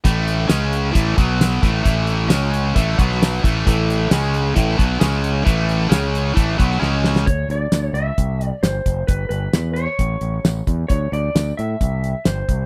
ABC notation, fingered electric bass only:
X:1
M:4/4
L:1/8
Q:1/4=133
K:A
V:1 name="Fingered electric bass" clef=bass
A,,,2 C,,2 A,,, B,,,2 A,,, | A,,,2 C,,2 A,,, B,,,2 A,,, | A,,,2 C,,2 A,,, B,,, C,,2 | A,,,2 C,,2 A,,, B,,, C,,2 |
D,, D,, D,, C,, =C,,2 =G,,, F,,, | =G,,, G,,, E,,2 A,,, A,,, A,,, E,, | D,, D,, D,, A,, =C,,2 =G,,, C,, |]